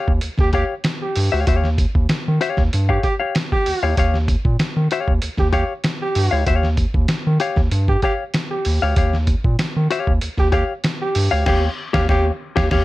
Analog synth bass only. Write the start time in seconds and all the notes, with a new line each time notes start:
0.08 D#2
0.23 D#2
0.39 D#2
1.17 G2
1.33 D2
1.48 D#2
1.95 D#2
2.11 D#3
2.28 D#3
2.58 D#2
2.74 G2
3.67 D#2
3.83 D#2
3.98 D#2
4.45 A#2
4.60 D#3
4.77 D#3
5.08 D#2
5.23 D#2
5.39 D#2
6.16 G2
6.32 D2
6.47 D#2
6.95 D#2
7.10 D#3
7.27 D#3
7.57 D#2
7.72 G2
8.66 D#2
8.83 D2
8.97 D#2
9.45 A#2
9.60 D#3
9.76 D#3
10.08 D#2
10.23 D#2
10.38 D#2
11.16 G2
11.33 D2
11.47 D#2
11.95 D#2
12.09 D#2
12.57 D#2
12.72 D#2